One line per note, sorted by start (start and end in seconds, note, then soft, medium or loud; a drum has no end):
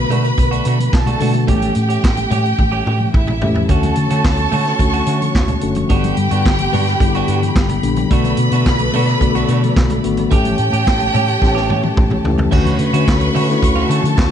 0.00 1.21 D3 medium
0.00 1.21 A3 medium
0.00 1.21 B3 medium
0.00 1.22 F#4 medium
0.00 0.90 B4 medium
0.00 0.90 B5 medium
0.10 0.30 B2 medium
0.10 0.26 A3 medium
0.10 0.24 D4 medium
0.10 0.23 F#4 medium
0.10 closed hi-hat medium
0.10 low conga medium
0.24 muted clean electric guitar stroke soft
0.24 closed hi-hat soft
0.38 0.58 B1 medium
0.38 muted clean electric guitar stroke soft
0.38 kick medium
0.38 closed hi-hat medium
0.51 0.65 A3 medium
0.51 0.65 D4 medium
0.51 0.66 F#4 medium
0.51 closed hi-hat soft
0.65 0.86 B2 loud
0.65 0.78 A3 medium
0.65 0.78 D4 medium
0.65 0.79 F#4 medium
0.65 closed hi-hat medium
0.79 closed hi-hat soft
0.79 high conga medium
0.93 1.14 B1 medium
0.93 1.47 A4 medium
0.93 1.47 A5 medium
0.93 muted clean electric guitar stroke soft
0.93 kick loud
0.93 snare loud
0.93 clap medium
0.93 muted conga soft
1.06 1.19 A3 medium
1.06 1.20 D4 medium
1.06 1.19 F#4 medium
1.06 closed hi-hat medium
1.06 low conga medium
1.20 1.50 B2 medium
1.20 1.38 D3 medium
1.20 1.36 A3 medium
1.20 1.38 A3 medium
1.20 1.38 B3 medium
1.20 1.34 D4 medium
1.20 1.33 F#4 medium
1.20 1.38 F#4 medium
1.20 open hi-hat medium
1.20 low conga medium
1.34 muted clean electric guitar stroke medium
1.34 closed hi-hat soft
1.34 high conga medium
1.47 1.69 A1 medium
1.47 2.17 E3 medium
1.47 1.73 A3 medium
1.47 2.17 A3 medium
1.47 1.55 B3 medium
1.47 1.74 C#4 medium
1.47 3.11 G4 medium
1.47 1.74 G4 medium
1.47 2.17 G4 medium
1.47 3.11 G5 medium
1.47 kick medium
1.47 closed hi-hat medium
1.47 muted conga soft
1.56 2.21 C#4 medium
1.62 closed hi-hat soft
1.62 muted conga soft
1.62 high conga medium
1.75 1.97 A2 loud
1.75 closed hi-hat medium
1.89 2.02 A3 medium
1.89 2.02 C#4 medium
1.89 2.01 G4 medium
1.89 closed hi-hat medium
2.04 2.24 A1 medium
2.04 kick loud
2.04 snare loud
2.04 clap medium
2.04 muted conga soft
2.17 muted clean electric guitar stroke soft
2.17 closed hi-hat soft
2.17 muted conga soft
2.17 high conga soft
2.30 2.52 A2 medium
2.30 2.46 A3 medium
2.30 2.45 C#4 medium
2.30 2.43 G4 medium
2.30 closed hi-hat soft
2.30 low conga medium
2.44 muted clean electric guitar stroke soft
2.44 closed hi-hat soft
2.59 2.79 A1 medium
2.59 muted clean electric guitar stroke soft
2.59 kick medium
2.59 high tom soft
2.59 muted conga soft
2.72 2.84 A3 medium
2.72 2.85 C#4 medium
2.72 2.86 G4 medium
2.72 muted conga soft
2.85 3.07 A2 medium
2.85 2.98 A3 medium
2.85 2.99 C#4 medium
2.85 2.98 G4 medium
2.85 mid tom medium
2.99 muted clean electric guitar stroke soft
2.99 high conga medium
3.13 3.44 A1 loud
3.13 3.69 E4 medium
3.13 3.69 E5 medium
3.13 muted clean electric guitar stroke soft
3.13 kick loud
3.13 mid tom medium
3.13 muted conga soft
3.27 muted clean electric guitar stroke soft
3.27 mid tom medium
3.27 muted conga soft
3.27 low conga medium
3.41 3.63 A2 medium
3.41 3.59 E3 medium
3.41 3.59 A3 medium
3.41 3.59 C#4 medium
3.41 3.59 G4 loud
3.41 floor tom loud
3.41 low conga medium
3.55 muted clean electric guitar stroke soft
3.55 floor tom medium
3.55 high conga medium
3.68 3.90 D2 medium
3.68 4.37 D3 medium
3.68 4.38 A3 medium
3.68 3.95 A3 medium
3.68 4.38 C#4 medium
3.68 3.95 C#4 medium
3.68 5.88 F#4 medium
3.68 4.38 F#4 medium
3.68 3.96 F#4 medium
3.68 5.59 A4 medium
3.68 5.88 C#5 medium
3.68 5.59 A5 medium
3.68 5.88 C#6 medium
3.68 kick medium
3.68 closed hi-hat medium
3.83 closed hi-hat soft
3.83 muted conga soft
3.83 high conga medium
3.96 4.07 D3 medium
3.96 muted clean electric guitar stroke soft
3.96 closed hi-hat medium
4.10 4.21 D3 medium
4.10 4.24 A3 soft
4.10 4.23 C#4 medium
4.10 4.23 F#4 medium
4.10 closed hi-hat medium
4.25 4.45 D2 medium
4.25 kick loud
4.25 snare loud
4.25 clap medium
4.37 muted clean electric guitar stroke soft
4.37 closed hi-hat soft
4.37 high conga medium
4.52 4.73 D3 medium
4.52 4.68 A3 medium
4.52 4.66 C#4 medium
4.52 4.64 F#4 loud
4.52 open hi-hat medium
4.52 low conga medium
4.65 muted clean electric guitar stroke soft
4.65 snare soft
4.65 closed hi-hat soft
4.79 5.00 D2 medium
4.79 5.31 D3 medium
4.79 5.31 A3 medium
4.79 5.31 C#4 medium
4.79 5.31 F#4 medium
4.79 muted clean electric guitar stroke soft
4.79 kick medium
4.79 closed hi-hat medium
4.79 muted conga soft
4.94 5.06 A3 medium
4.94 5.07 C#4 medium
4.94 5.07 F#4 medium
4.94 closed hi-hat soft
4.94 muted conga soft
5.06 5.28 D3 medium
5.06 5.19 A3 medium
5.06 5.20 C#4 medium
5.06 5.20 F#4 medium
5.06 closed hi-hat medium
5.22 closed hi-hat soft
5.22 high conga medium
5.35 5.56 D2 medium
5.35 muted clean electric guitar stroke soft
5.35 kick loud
5.35 snare loud
5.35 clap medium
5.48 muted clean electric guitar stroke soft
5.48 closed hi-hat soft
5.48 muted conga soft
5.48 low conga medium
5.61 5.83 F#1 medium
5.61 5.80 D3 medium
5.61 5.80 A3 medium
5.61 5.80 C#4 medium
5.61 5.80 F#4 medium
5.61 closed hi-hat medium
5.75 muted clean electric guitar stroke soft
5.75 closed hi-hat soft
5.75 high conga medium
5.89 6.11 G1 medium
5.89 6.58 D3 medium
5.89 6.59 G3 medium
5.89 6.15 B3 medium
5.89 6.59 B3 medium
5.89 6.16 D4 medium
5.89 6.16 F#4 medium
5.89 8.09 G4 medium
5.89 7.80 G4 loud
5.89 6.59 G4 medium
5.89 8.09 G5 medium
5.89 7.80 G5 loud
5.89 10.28 B5 medium
5.89 kick medium
5.89 closed hi-hat medium
5.89 muted conga soft
6.04 closed hi-hat soft
6.04 muted conga soft
6.04 high conga medium
6.17 6.28 G2 medium
6.17 muted clean electric guitar stroke soft
6.17 closed hi-hat medium
6.31 6.42 G2 loud
6.31 6.45 B3 soft
6.31 6.44 D4 medium
6.31 6.44 F#4 medium
6.31 closed hi-hat medium
6.46 6.66 G1 loud
6.46 kick loud
6.46 snare loud
6.46 clap medium
6.58 muted clean electric guitar stroke soft
6.58 closed hi-hat soft
6.58 high conga medium
6.73 6.94 G2 medium
6.73 6.89 B3 medium
6.73 6.88 D4 medium
6.73 6.86 F#4 medium
6.73 open hi-hat medium
6.73 low conga medium
6.87 muted clean electric guitar stroke soft
6.87 snare soft
6.87 closed hi-hat soft
7.00 7.21 G1 medium
7.00 7.52 D3 medium
7.00 7.52 G3 medium
7.00 7.52 B3 medium
7.00 7.08 E4 medium
7.00 muted clean electric guitar stroke soft
7.00 kick loud
7.00 closed hi-hat medium
7.00 muted conga soft
7.08 7.56 G4 medium
7.15 7.28 B3 medium
7.15 7.29 D4 medium
7.15 7.30 F#4 medium
7.15 closed hi-hat soft
7.28 7.49 G2 medium
7.28 7.41 B3 medium
7.28 7.41 D4 medium
7.28 7.41 F#4 medium
7.28 closed hi-hat medium
7.42 muted clean electric guitar stroke medium
7.42 closed hi-hat soft
7.42 high conga medium
7.56 7.76 G1 medium
7.56 muted clean electric guitar stroke soft
7.56 kick loud
7.56 snare loud
7.56 clap loud
7.69 muted clean electric guitar stroke soft
7.69 closed hi-hat medium
7.69 low conga medium
7.83 8.04 A#1 medium
7.83 8.00 D3 medium
7.83 8.00 G3 medium
7.83 8.01 B3 medium
7.83 8.01 D4 medium
7.83 closed hi-hat medium
7.96 muted clean electric guitar stroke soft
7.96 closed hi-hat soft
7.96 high conga medium
8.09 8.32 B1 medium
8.09 8.79 D3 medium
8.09 8.79 A3 medium
8.09 8.37 A3 medium
8.09 8.79 B3 medium
8.09 8.37 D4 medium
8.09 8.79 F#4 medium
8.09 8.38 F#4 medium
8.09 10.30 A4 medium
8.09 10.01 B4 medium
8.09 10.30 D5 medium
8.09 10.01 B5 loud
8.09 kick loud
8.09 closed hi-hat medium
8.09 muted conga soft
8.24 closed hi-hat soft
8.24 muted conga soft
8.24 high conga medium
8.37 8.49 B2 loud
8.37 muted clean electric guitar stroke soft
8.37 closed hi-hat medium
8.51 8.62 B2 loud
8.51 8.66 A3 medium
8.51 8.65 D4 medium
8.51 8.65 F#4 medium
8.51 closed hi-hat medium
8.66 8.87 B1 loud
8.66 kick loud
8.66 snare loud
8.66 clap medium
8.66 muted conga soft
8.79 muted clean electric guitar stroke medium
8.79 closed hi-hat soft
8.79 high conga medium
8.93 9.14 B2 loud
8.93 9.09 A3 medium
8.93 9.08 D4 medium
8.93 9.06 F#4 loud
8.93 open hi-hat medium
8.93 low conga medium
9.07 muted clean electric guitar stroke soft
9.07 snare soft
9.07 closed hi-hat soft
9.20 9.42 B1 loud
9.20 9.72 D3 medium
9.20 9.72 A3 medium
9.20 9.73 B3 medium
9.20 9.73 F#4 loud
9.20 muted clean electric guitar stroke soft
9.20 kick medium
9.20 closed hi-hat medium
9.35 9.48 A3 medium
9.35 9.49 D4 medium
9.35 9.50 F#4 medium
9.35 closed hi-hat soft
9.35 muted conga soft
9.48 9.69 B2 medium
9.48 9.61 A3 medium
9.48 9.62 D4 medium
9.48 9.62 F#4 medium
9.48 closed hi-hat medium
9.63 muted clean electric guitar stroke medium
9.63 closed hi-hat soft
9.63 high conga medium
9.76 9.97 B1 medium
9.76 muted clean electric guitar stroke soft
9.76 kick loud
9.76 snare loud
9.76 clap medium
9.76 muted conga soft
9.90 muted clean electric guitar stroke soft
9.90 closed hi-hat soft
9.90 muted conga soft
9.90 low conga medium
10.03 10.25 G#1 medium
10.03 10.21 D3 medium
10.03 10.21 A3 medium
10.03 10.21 B3 medium
10.03 10.21 F#4 medium
10.03 closed hi-hat medium
10.17 muted clean electric guitar stroke soft
10.17 closed hi-hat soft
10.17 high conga medium
10.31 10.52 A1 loud
10.31 11.00 E3 medium
10.31 10.57 A3 medium
10.31 11.00 A3 medium
10.31 10.57 C#4 loud
10.31 11.00 C#4 medium
10.31 12.49 G4 medium
10.31 12.21 G4 medium
10.31 10.58 G4 loud
10.31 11.01 G4 medium
10.31 12.50 C#5 medium
10.31 12.21 G5 loud
10.31 12.49 A5 medium
10.31 kick loud
10.31 closed hi-hat medium
10.45 closed hi-hat soft
10.45 muted conga soft
10.45 high conga medium
10.58 10.69 A2 medium
10.58 closed hi-hat medium
10.73 10.83 A2 loud
10.73 10.86 A3 medium
10.73 10.86 C#4 medium
10.73 10.85 G4 medium
10.73 closed hi-hat medium
10.87 11.08 A1 medium
10.87 kick loud
10.87 snare loud
10.87 clap medium
10.87 muted conga soft
11.00 muted clean electric guitar stroke medium
11.00 closed hi-hat soft
11.00 high conga medium
11.14 11.35 A2 medium
11.14 11.30 A3 medium
11.14 11.28 C#4 medium
11.14 11.27 G4 loud
11.14 closed hi-hat medium
11.14 low conga medium
11.28 muted clean electric guitar stroke soft
11.28 closed hi-hat soft
11.41 11.71 A1 loud
11.41 11.93 E3 medium
11.41 11.94 A3 medium
11.41 11.94 C#4 medium
11.41 11.94 G4 medium
11.41 muted clean electric guitar stroke soft
11.41 kick medium
11.41 snare medium
11.55 11.67 A3 medium
11.55 11.68 C#4 medium
11.55 11.69 G4 medium
11.55 snare soft
11.55 muted conga soft
11.68 11.90 A2 medium
11.68 11.81 A3 medium
11.68 11.82 C#4 medium
11.68 11.82 G4 medium
11.68 high tom medium
11.83 muted clean electric guitar stroke medium
11.83 high tom medium
11.83 high conga medium
11.96 12.18 A1 medium
11.96 muted clean electric guitar stroke soft
11.96 kick loud
11.96 mid tom medium
11.96 muted conga soft
12.10 muted clean electric guitar stroke medium
12.10 mid tom medium
12.10 muted conga soft
12.10 low conga medium
12.24 12.45 C#2 medium
12.24 12.42 E3 medium
12.24 12.42 A3 medium
12.24 12.42 C#4 medium
12.24 12.42 G4 medium
12.24 floor tom loud
12.38 muted clean electric guitar stroke soft
12.38 floor tom loud
12.38 high conga medium
12.51 12.73 D2 medium
12.51 12.78 D3 medium
12.51 12.77 A3 medium
12.51 12.78 A3 medium
12.51 12.78 C#4 medium
12.51 12.78 F#4 medium
12.51 14.31 F#4 medium
12.51 12.78 F#4 loud
12.51 13.87 B4 medium
12.51 14.31 C#5 medium
12.51 13.87 B5 medium
12.51 14.31 C#6 medium
12.51 kick loud
12.51 crash medium
12.51 muted conga soft
12.65 closed hi-hat soft
12.65 high conga medium
12.79 12.90 D3 medium
12.79 muted clean electric guitar stroke soft
12.79 closed hi-hat medium
12.93 13.28 D3 medium
12.93 13.04 D3 medium
12.93 13.28 A3 medium
12.93 13.07 A3 medium
12.93 13.28 C#4 medium
12.93 13.06 C#4 medium
12.93 13.06 F#4 medium
12.93 13.28 F#4 loud
12.93 closed hi-hat medium
13.08 13.28 D2 loud
13.08 kick loud
13.08 snare loud
13.08 clap medium
13.21 muted clean electric guitar stroke soft
13.21 closed hi-hat soft
13.21 muted conga soft
13.35 13.56 D3 loud
13.35 13.50 A3 medium
13.35 13.49 C#4 medium
13.35 13.48 F#4 medium
13.35 open hi-hat medium
13.35 low conga medium
13.49 14.17 D3 medium
13.49 14.17 A3 medium
13.49 14.18 C#4 medium
13.49 13.56 E4 medium
13.49 muted clean electric guitar stroke medium
13.49 snare soft
13.49 closed hi-hat soft
13.57 14.21 F#4 medium
13.62 13.83 D2 loud
13.62 muted clean electric guitar stroke soft
13.62 kick medium
13.62 closed hi-hat medium
13.75 13.88 A3 medium
13.75 13.90 C#4 medium
13.75 13.90 F#4 medium
13.75 muted conga soft
13.90 14.00 D3 medium
13.90 14.02 A3 medium
13.90 14.03 C#4 medium
13.90 14.02 F#4 medium
13.90 14.31 A4 medium
13.90 14.31 A5 medium
13.90 closed hi-hat medium
14.04 14.14 D3 loud
14.04 muted clean electric guitar stroke medium
14.04 closed hi-hat soft
14.04 high conga medium
14.17 14.31 D2 loud
14.17 muted clean electric guitar stroke soft
14.17 kick loud
14.17 snare loud
14.17 clap medium
14.17 muted conga soft